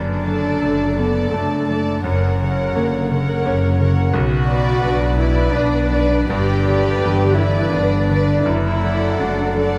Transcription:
Already playing: F#1 F#2 B3 D4
0.25 F#3 A4 D5 A5
0.61 F#1 G3 A3 D4 A4
0.97 F#3 B3 A4 D5 A5
1.32 F#1 A3 D4 A4
1.67 F#3 A4 D5 A5
2.03 F#1 F#2 F#3 A#4 C#5 F#5
2.40 C#3 A#4 C#5 F#5
2.75 F#1 D3 A#3 C#4 C#5
3.10 C#3 A#4 C#5 F#5
3.45 F#1 A#3 C#4 C#5
3.80 C#3 A#4 C#5 F#5
4.14 B1 B2 F#4
4.49 F#3 B4 D5
4.82 B1 G3 B3 D4 B4
5.19 F#3 E4 B4 D5
5.55 B1 B3 D4 B4
5.93 F#3 B4 D5
6.30 G1 G2 G4 B4 D5
6.67 D3 B4 D5
7.03 G1 E3 B3 D4 B4
7.37 D3 E4 B4 D5
7.73 G1 B3 D4 B4
8.10 D3 B4 D5
8.45 F#1 F#2 E4
8.83 F#3 A4 D5 F#5
9.19 F#1 G3 A3 D4 F#4
9.56 F#3 A4 D5 F#5

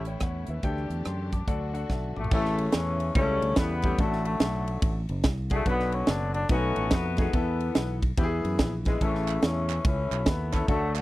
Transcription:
Already playing: A1 A2 E3 A3 C#4 E4
0.05 C#5 G5, closed hi-hat
0.20 E2 C#5 F#5, kick, cross-stick, closed hi-hat
0.47 D#2 B4 E5, closed hi-hat
0.63 D2 D3 D4 G4 A4 G5, kick, closed hi-hat
0.77 cross-stick
0.90 E2, closed hi-hat
1.05 F#2 G5 C6, cross-stick, closed hi-hat
1.32 A5 D6, kick, closed hi-hat
1.48 D2 D3 F#3 D4 F#4 A4 F#5, kick, closed hi-hat
1.73 D4 F#4 A4 F#5, closed hi-hat
1.90 B1 E5 A5, kick, snare
2.16 A#1 A3 A5 D6, mid tom
2.24 floor tom
2.31 A1 A2 C#3 E3 A3 C#4 E4 A4, kick, crash
2.45 snare
2.58 ride
2.72 E2 E3 A3 C#4, snare, ride
3.00 ride
3.15 C#2 C#3 E3 G3 A3 C#4 E4 G4, kick, ride
3.22 A4
3.42 D2, ride
3.56 E2 E3 G3 B3, kick, snare, ride
3.82 G3 A3 C#4 E4 G4, kick, ride
3.98 A1 A2 D3 F#3 A3 D4 F#4 A4, kick, ride
4.13 snare
4.25 D3 F#3 A3, ride
4.40 B1, snare, ride
4.68 ride
4.82 A1, kick, ride
5.09 F#1, ride
5.23 C2, kick, snare, ride
5.50 A3 D4 F#4 G#4, kick, ride
5.66 B1 B2 D3 F#3 B3 D4 F#4 B4, kick, ride
5.79 snare
5.92 C#4, ride
6.07 F#1 D4, snare, ride
6.34 D4, ride
6.49 B1 B2 A3 B3 C#4 D#4 F#4 B4, kick, ride
6.76 A1, ride
6.91 F2 B3, kick, snare, ride
7.17 E3 A3 B3 D#4 F#4 G#4, kick, snare, ride
7.33 E2 E3 B3 E4 A4, kick, ride
7.60 ride
7.75 B1, snare, ride
8.03 kick, ride
8.18 E2 E3 B3 E4 G4, kick, ride
8.24 G#4
8.45 F#2, ride
8.59 A#1, kick, snare, ride
8.85 G#3 B3 E4 G#4, kick, snare, ride
9.01 A1 A2 C#3 E3 A3 C#4 E4 A4, kick, ride
9.15 snare
9.28 clap, ride
9.42 E2 E3 A3 C#4, snare, ride
9.70 clap, ride
9.85 C#2 A3 C#4 E4, kick, ride
10.11 B1, clap, ride
10.26 D#2 B3, kick, snare, ride
10.52 C#4 E4 A4, kick, snare, clap, ride
10.67 D2 D3 F#3 A3 D4 F#4 A4, kick, ride
10.94 D3 F#3 A3, clap, ride

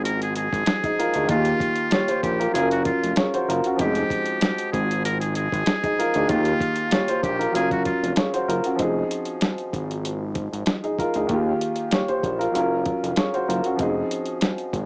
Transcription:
Already playing: G#1 F3 G#3 C4 D#4
0.04 A#4, closed hi-hat
0.21 G#4, closed hi-hat
0.35 G#4, closed hi-hat
0.52 G#1, kick, closed hi-hat
0.66 snare, closed hi-hat
0.84 D#4 G#4, kick, closed hi-hat
0.99 F4 A#4, closed hi-hat
1.14 D2 D#4 G#4, closed hi-hat
1.27 D#2 D#3 A#3 F4, kick, closed hi-hat
1.32 F4 G4
1.45 closed hi-hat
1.60 kick, closed hi-hat
1.76 closed hi-hat
1.91 G4 C#5, snare, closed hi-hat
2.08 G4 C5, closed hi-hat
2.23 A#1 G4, kick, closed hi-hat
2.39 F4 A#4, closed hi-hat
2.52 F#1 F#3 C#4 G#4, closed hi-hat
2.56 F4 A#4
2.71 F#4, closed hi-hat
2.85 F4, kick, closed hi-hat
3.03 F1, closed hi-hat
3.16 G#4 C#5, snare, closed hi-hat
3.34 F#4 C5, closed hi-hat
3.48 F#1 F4 A#4, closed hi-hat
3.64 C#4 F#4, closed hi-hat
3.76 F1 F3 C4, kick, closed hi-hat
3.80 G#3 D#4 G4
3.95 closed hi-hat
4.10 kick, closed hi-hat
4.26 closed hi-hat
4.41 snare, closed hi-hat
4.58 closed hi-hat
4.72 G#1 G#4, kick, closed hi-hat
4.91 closed hi-hat
5.05 A#4, closed hi-hat
5.20 G#4, closed hi-hat
5.35 G#4, closed hi-hat
5.53 G#1, kick, closed hi-hat
5.66 snare, closed hi-hat
5.84 D#4 G#4, kick, closed hi-hat
5.99 F4 A#4, closed hi-hat
6.14 D2 D#4 G#4, closed hi-hat
6.27 D#2 D#3 A#3 F4, kick, closed hi-hat
6.32 F4 G4
6.45 closed hi-hat
6.60 kick, closed hi-hat
6.75 closed hi-hat
6.91 G4 C#5, snare, closed hi-hat
7.08 G4 C5, closed hi-hat
7.23 A#1 G4, kick, closed hi-hat
7.39 F4 A#4, closed hi-hat
7.51 F#1 F#3 C#4, closed hi-hat
7.56 F4 G#4 A#4
7.71 F#4, kick, closed hi-hat
7.85 F4, kick, closed hi-hat
8.03 F1, closed hi-hat
8.16 G#4 C#5, snare, closed hi-hat
8.34 F#4 C5, closed hi-hat
8.48 F#1 F4 A#4, closed hi-hat
8.64 C#4 F#4, closed hi-hat
8.75 F3 C4, closed hi-hat
8.79 F1 D#4 G#4, kick
9.11 closed hi-hat
9.25 closed hi-hat
9.41 snare, closed hi-hat
9.58 closed hi-hat
9.73 G#1, kick, closed hi-hat
9.91 closed hi-hat
10.05 closed hi-hat
10.35 kick, closed hi-hat
10.53 G#1, closed hi-hat
10.66 snare, closed hi-hat
10.84 D#4 G#4, closed hi-hat
10.99 F4 A#4, kick, closed hi-hat
11.14 D2 D#4 G#4, closed hi-hat
11.27 D#2 D#3 A#3, kick, closed hi-hat
11.31 F4 G4
11.61 closed hi-hat
11.75 closed hi-hat
11.91 G4 C#5, snare, closed hi-hat
12.08 G4 C5, closed hi-hat
12.23 A#1, kick, closed hi-hat
12.39 F4 A#4, closed hi-hat
12.51 F#1 F#3 C#4, closed hi-hat
12.56 F4 A#4
12.85 kick, closed hi-hat
13.03 F1, closed hi-hat
13.16 G#4 C#5, snare, closed hi-hat
13.34 F#4 C5, closed hi-hat
13.48 F#1 F4 A#4, closed hi-hat
13.64 C#4 F#4, closed hi-hat
13.76 F1 F3 C4, kick, closed hi-hat
13.80 D#4 G#4
14.11 closed hi-hat
14.26 closed hi-hat
14.41 snare, closed hi-hat
14.58 closed hi-hat
14.73 G#1, kick, closed hi-hat

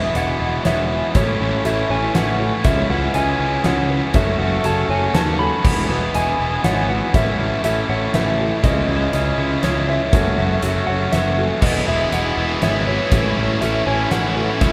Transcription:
Already playing: E3 G#3 B3 E4 F#4 B4 E5 G#5
0.14 E1 E3 G#3 B3 E4 D#5 F#5, closed hi-hat
0.40 E1 G#3 B3 E4
0.64 E1 E3 G#3 B3 E4 C#5 E5, snare, closed hi-hat
0.91 B4
1.14 A1 A2 E3 A3 C#4 E4 A4 B4 C#5, kick, closed hi-hat
1.40 A1 A3 C#4 E4
1.64 A1 E3 A3 C#4 E4 A4 E5, closed hi-hat
1.90 A1 A3 C#4 E4 C#5 G#5
2.14 A1 A2 E3 A3 C#4 E4 B4 F#5, snare, closed hi-hat
2.40 A4
2.64 C#2 C#3 G#3 C#4 E4 D#5 E5, kick, closed hi-hat
2.90 C#2 G#3 C#4 E4 B4 F#5
3.14 C#2 C#3 G#3 C#4 D#5 G#5, closed hi-hat
3.18 E4
3.39 C#2 C#4 E4
3.44 G#3
3.64 C#2 C#3 G#3 C#4 E4 C#5 F#5, snare, closed hi-hat
3.90 B4
4.14 F#1 F#3 A3 C#4 F#4 A4 E5 G#5, kick, closed hi-hat
4.39 F#1 A3 C#4 F#4
4.63 F#1 F#3 A3 C#4 F#4 A4 A5, closed hi-hat
4.88 F#1 A3 C#4 F#4 C#5 G#5
5.14 D#2 F#3 A3 C#4 F#4 B4 A5, snare, closed hi-hat
5.39 A4 B5
5.64 E1 E3 G#3 B3 E4 F#4 D#5, kick, crash
5.88 E1 G#3 B3 E4 B4
6.14 E1 E3 G#3 B3 E4 D#5 G#5, closed hi-hat
6.38 E1 G#3 B3 E4
6.63 G#1 E3 G#3 B3 E4 C#5 F#5, snare, closed hi-hat
6.89 B4 F#5
7.13 A1 A2 E3 A3 C#4 E4 A4 B4 C#5 E5, kick, closed hi-hat
7.38 A1 A3 C#4 E4
7.63 A1 E3 A3 C#4 E4 A4 E5, closed hi-hat
7.88 A1 A3 C#4 E4 C#5 F#5
8.13 A1 A2 E3 A3 C#4 E4 B4 E5, snare, closed hi-hat
8.40 A4
8.63 C#2 C#3 G#3 C#4 E4 D#5, kick, closed hi-hat
8.88 C#2 G#3 C#4 E4 B4
9.13 C#2 C#3 G#3 C#4 E4 D#5, closed hi-hat
9.37 C#2 G#3 C#4 E4
9.62 C#2 C#3 G#3 C#4 E4 C#5, snare, closed hi-hat
9.89 B4 E5
10.12 F#1 F#3 A3 C#4 F#4 A4 E5 G#5, kick, closed hi-hat
10.37 F#1 A3 C#4 F#4
10.62 F#1 F#3 A3 C#4 F#4 A4, closed hi-hat
10.87 F#1 A3 C#4 F#4 C#5 F#5
11.12 F#1 F#3 A3 C#4 F#4 B4 E5, snare, closed hi-hat
11.38 A4
11.61 E1 E3 G#3 B3 E4 F#4 D#5, kick, crash
11.86 E1 G#3 B3 E4 B4 E5
12.11 E1 E3 G#3 B3 E4 D#5 F#5, closed hi-hat
12.36 E1 G#3 B3 E4
12.61 G#1 E3 G#3 B3 E4 C#5 E5, snare, closed hi-hat
12.86 G#3 B3 E4 B4 C#5
13.11 A1 A2 E3 A3 C#4 E4 A4 B4 C#5 G#5, kick, closed hi-hat
13.36 A1 A3 C#4 E4
13.61 A1 E3 A3 C#4 E4 A4 E5, closed hi-hat
13.85 A1 A3 C#4 E4 C#5 G#5
14.11 A1 A2 E3 A3 C#4 E4 B4 F#5, snare, closed hi-hat
14.36 A3 C#4 E4 A4
14.60 C#2 C#3 G#3 C#4 E4 B4 D#5 E5, kick, closed hi-hat

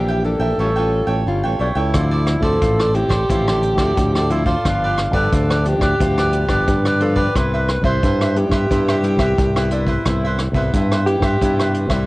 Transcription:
Already playing: A#1 E3 A#3 D4 G4
0.08 A#4 E5 G5
0.24 A#3 D4 G4 A4, muted cavaquinho stroke
0.39 A#1 A#4 E5 G5
0.58 A1 A2 G3 C#4 E4 F4 A4 C#5 G5
0.76 G3 C#4 F4 A4 C#5 G5
1.07 A1 A4 C#5 G5
1.26 G1 G3 C#4 F4
1.44 A1 A4 C#5 G5
1.59 B1 D4 E4 A4 C#5 G5
1.75 C#2 E4 A4 C#5 G5
1.94 D2 D3 F3 C4 E4 F4 A4 C5 D5, kick, cross-stick, closed hi-hat
2.11 A4 C5 D5
2.26 muted cavaquinho stroke, cross-stick, closed hi-hat
2.41 D2 F3 C4 E4 A4 C5 D5, kick
2.61 A1 A2 F4 A4 C5 D5, kick, closed hi-hat
2.79 A4 C5 D5, cross-stick
2.94 F3 C4 E4 G4, muted cavaquinho stroke, closed hi-hat
3.08 A1 A4 C5 D5, kick, cross-stick, closed hi-hat
3.29 A1 D3 F3 C4 E4 F4 A4 C5 D5, kick, closed hi-hat
3.48 A4 C5 D5, cross-stick, closed hi-hat
3.63 closed hi-hat
3.76 D2 F3 C4 E4 A4 C5 D5, kick, cross-stick, closed hi-hat
3.97 D2 A2, kick, closed hi-hat
4.15 A4 C5 D5, cross-stick
4.30 F3 C4 E4 F4 A4 C5 D5, closed hi-hat
4.46 F4 A4 C5 D5, kick
4.65 G1 G2 F3 B3 D4 F4 G4 B4 D5, kick, cross-stick, closed hi-hat
4.84 G4 B4 D5
4.98 muted cavaquinho stroke, cross-stick, closed hi-hat
5.11 G1 F3 B3 D4 A4 B4 D5, kick, closed hi-hat
5.15 G4
5.32 D2 D3 F4 G4 B4 D5, kick, closed hi-hat
5.50 G4 B4 D5, cross-stick, closed hi-hat
5.60 A4
5.65 F3 B3 D4 G4, muted cavaquinho stroke, closed hi-hat
5.78 D2 B4 D5, kick, cross-stick
5.83 G4
5.99 D2 G2 F3 B3 D4 F4 G4 B4 D5, kick, closed hi-hat
6.18 G4 B4 D5, cross-stick
6.33 closed hi-hat
6.47 G1 F3 B3 D4 B4 D5, kick, cross-stick, closed hi-hat
6.51 G4
6.67 G2 D3, kick, closed hi-hat
6.85 G4 B4 D5, cross-stick
7.00 F3 B3 D4 F4 G4 A4 B4 D5, closed hi-hat
7.16 G4 B4 D5, kick
7.35 C2 C3 G3 B3 E4 B4 C5 E5, kick, cross-stick, closed hi-hat
7.54 B4 C5 E5
7.69 muted cavaquinho stroke, cross-stick, closed hi-hat
7.82 C2 G3 E4 C5 E5, kick
7.86 B4
8.03 G2 E4 B4 C5 E5, kick, closed hi-hat
8.21 B4 C5 E5, cross-stick
8.36 G3 B3 E4 G4, muted cavaquinho stroke, closed hi-hat
8.49 G2 C5 E5, kick, cross-stick, closed hi-hat
8.53 B4
8.70 G2 C3 G3 B3 E4 B4 C5 E5, kick, closed hi-hat
8.88 B4 C5 E5, cross-stick, closed hi-hat
9.03 G3 B3 E4, closed hi-hat
9.17 C2 C5 E5, kick, cross-stick, closed hi-hat
9.21 B4
9.38 C2 G2, kick, closed hi-hat
9.56 G3 B3 E4 B4 C5 E5, cross-stick
9.71 D4 E4 B4 C5 E5, closed hi-hat
9.87 E4 B4 C5 E5, kick
10.06 C2 C3 G3 B3 E4 B4 C5 E5, kick, cross-stick, closed hi-hat
10.25 B4 C5 E5
10.38 muted cavaquinho stroke, cross-stick, closed hi-hat
10.52 C2 G3 B3 E5, kick, closed hi-hat
10.56 E4 B4 C5
10.73 G2 E4 B4 C5 E5, kick, closed hi-hat
10.92 B4 C5 E5, cross-stick, closed hi-hat
11.06 G3 B3 E4 G4, muted cavaquinho stroke, closed hi-hat
11.20 G2 E5, kick, cross-stick
11.24 B4 C5
11.41 G2 C3 G3 B3 E4 B4 C5 E5, kick, closed hi-hat
11.59 B4 C5 E5, cross-stick
11.74 closed hi-hat
11.87 C2 G3 E4 B4 C5 E5, kick, cross-stick, closed hi-hat

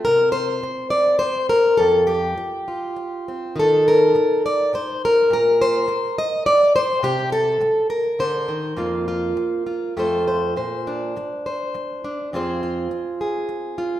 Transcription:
Already playing: C4
0.05 C3 A#4
0.32 C5
0.63 muted steel-string acoustic guitar stroke
0.90 D5
1.19 C5, muted steel-string acoustic guitar stroke
1.49 A#4
1.77 F2 A4
2.07 G4
2.37 muted steel-string acoustic guitar stroke
2.68 F4
2.96 muted steel-string acoustic guitar stroke
3.28 C4
3.56 D#3 D#4 A4
3.88 A#4
4.15 muted steel-string acoustic guitar stroke
4.46 D5
4.73 C5, muted steel-string acoustic guitar stroke
5.05 A#4
5.30 A#2 A#4
5.62 C5
5.88 muted steel-string acoustic guitar stroke
6.18 D#5
6.46 D5, muted steel-string acoustic guitar stroke
6.76 C5
7.03 C3 G4
7.32 A4
7.61 muted steel-string acoustic guitar stroke
7.90 A#4
8.19 D3 C5
8.48 D#3
8.77 F2 A#3 F4
9.08 F4
9.37 muted steel-string acoustic guitar stroke
9.67 F4
9.97 F2 A3 F4 A4 C5
10.28 C5
10.56 A#2 C5
10.87 D4
11.16 muted steel-string acoustic guitar stroke
11.46 C5
11.74 muted steel-string acoustic guitar stroke
12.04 D4
12.33 F2 C4 F4 G#4 C5
12.63 F4
12.91 muted steel-string acoustic guitar stroke
13.21 G#4
13.49 muted steel-string acoustic guitar stroke
13.78 F4

